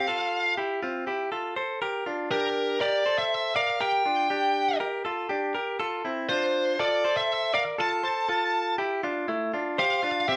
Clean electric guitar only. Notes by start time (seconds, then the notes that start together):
0.08 F4 A4
0.57 E4 G4
0.83 C4 F4
1.07 E4 G4
1.32 F4 A4
1.56 A4 C5
1.82 G4 A#4
2.06 D4 F4
2.31 D4 G4
2.81 G4 A#4
3.06 A4 C5
3.56 A#4 D5
3.81 G4 A#4
4.05 D4 F4
4.30 D4 G4
4.80 G4 A#4
5.05 F4 A4
5.29 D4 G4
5.55 G4 A#4
5.80 F4 A4
6.05 C4 E4
6.30 D4 F4
6.79 F4 A4
7.05 A4 C5
7.54 A#4 D5
7.78 F4 A4
8.03 A4 C5
8.29 F4 A4
8.78 E4 G4
9.03 D4 F4
9.28 A3 E4
9.54 D4 F4
9.78 G4 C5
10.03 D4 F4
10.28 C4 G4